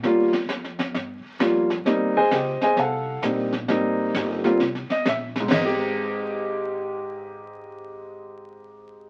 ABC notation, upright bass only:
X:1
M:4/4
L:1/8
Q:"Swing" 1/4=132
K:Ab
V:1 name="Upright bass" clef=bass
E,,2 F,,2 G,, z F,,2 | E,,2 D,, z C,,2 B,,,2 | A,,,2 G,,,2 C,, z B,,,2 | A,,,8- |
A,,,8 |]